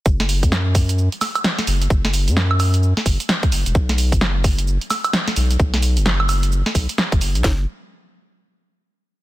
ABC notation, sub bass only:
X:1
M:4/4
L:1/16
Q:"Swing 16ths" 1/4=130
K:Bdor
V:1 name="Sub bass" clef=bass
F,,,3 F,,6 z4 z F,,,2 | F,,,3 F,,6 z F,,, z3 F,,, E,,, | B,,,3 F,,,6 z4 z B,,,2 | B,,,3 F,,,6 z B,,, z2 F,,, F,,, B,,, |
F,,,2 z12 z2 |]